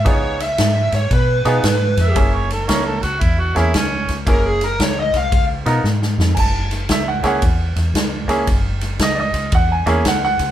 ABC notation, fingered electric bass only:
X:1
M:4/4
L:1/8
Q:"Swing" 1/4=114
K:F#mix
V:1 name="Fingered electric bass" clef=bass
C,,2 G,, G,, B,, B,, G,, ^E,, | F,,,2 C,, C,, E,, E,, C,, C,, | F,,,2 C,, ^B,,, C,, =B,, G,, ^E,, | F,,,2 C,, C,, E,, E,, C,, C,, |
F,,,2 C,, C,, E,, E,, C,, C,, |]